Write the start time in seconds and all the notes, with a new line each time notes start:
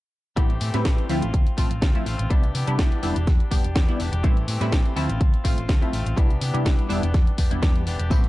0.36 A1 E3 G3 A3 B3 C4 E4 G4, kick, closed hi-hat
0.50 closed hi-hat
0.60 A2 E3 A3 C4 G4, open hi-hat
0.74 A2 G3 C4 E4 B4, snare, closed hi-hat
0.85 A1 E3 A3 C4 G4, kick, snare, closed hi-hat
0.98 closed hi-hat
1.09 D2 F3 A3 C4 E4 F4, open hi-hat
1.22 A1 C4 F4, closed hi-hat
1.34 D2, kick, closed hi-hat
1.47 closed hi-hat
1.57 A1 F3 A3 C4 F4, kick, open hi-hat
1.70 A1 C4 F4, closed hi-hat
1.81 D2 A3 C4 F4, kick, snare, closed hi-hat
1.95 F3 A3 C4 E4, closed hi-hat
2.05 A1 A3 C4 F4, open hi-hat
2.18 A1 C4 F4, closed hi-hat
2.30 E3 G3 B3 D4 E4 G4, kick, closed hi-hat
2.44 closed hi-hat
2.54 C3 E3 B3 D4 G4, open hi-hat
2.67 C3 G3 B3 D4 E4, closed hi-hat
2.79 C2 B3 D4 G4, kick, snare, closed hi-hat
2.92 closed hi-hat
3.02 E1 G3 B3 D4 E4 G4, open hi-hat
3.15 E1 D4 G4, closed hi-hat
3.27 kick, snare, closed hi-hat
3.40 closed hi-hat
3.51 E1 G3 B3 D4 G4, kick, open hi-hat
3.63 E1 D4 G4, closed hi-hat
3.75 E2 B3 D4 G4, kick, snare, closed hi-hat
3.88 G3 B3 D4 E4, closed hi-hat
3.99 E1 B3 D4 G4, open hi-hat
4.12 E1 D4 G4, closed hi-hat
4.23 A1 E3 G3 A3 B3 C4 E4 G4, kick, closed hi-hat
4.37 closed hi-hat
4.48 A2 E3 A3 C4 G4, open hi-hat
4.60 A2 G3 C4 E4 B4, snare, closed hi-hat
4.72 A1 E3 A3 C4 G4, kick, snare, closed hi-hat
4.86 closed hi-hat
4.96 D2 F3 A3 C4 E4 F4, open hi-hat
5.09 A1 C4 F4, closed hi-hat
5.21 D2, kick, closed hi-hat
5.34 closed hi-hat
5.44 A1 F3 A3 C4 F4, kick, open hi-hat
5.57 A1 C4 F4, closed hi-hat
5.69 D2 A3 C4 F4, kick, snare, closed hi-hat
5.81 F3 A3 C4 E4, closed hi-hat
5.93 A1 A3 C4 F4, open hi-hat
6.06 A1 C4 F4, closed hi-hat
6.16 C2 E3 G3 B3 D4 E4 G4, kick, closed hi-hat
6.30 closed hi-hat
6.41 C3 E3 B3 D4 G4, open hi-hat
6.53 C3 G3 B3 D4 E4, closed hi-hat
6.65 C2 E3 B3 D4 G4, kick, snare, closed hi-hat
6.79 closed hi-hat
6.89 E1 E3 G3 B3 D4 E4 G4, open hi-hat
7.02 E1 B3 D4 G4, closed hi-hat
7.14 E2, kick, snare, closed hi-hat
7.27 closed hi-hat
7.38 E1 E3 B3 D4 G4, kick, open hi-hat
7.51 E1 G3 B3 D4 E4 G4, closed hi-hat
7.62 E2 E3 G3 B3 D4 G4, kick, snare, closed hi-hat
7.75 closed hi-hat
7.86 E1 E3 B3 D4 G4, open hi-hat
7.99 E1 B3 D4 G4, closed hi-hat
8.10 A1 E3 G3 A3 B3 C4 E4 G4, kick, closed hi-hat, tambourine, high conga, maracas
8.23 closed hi-hat, maracas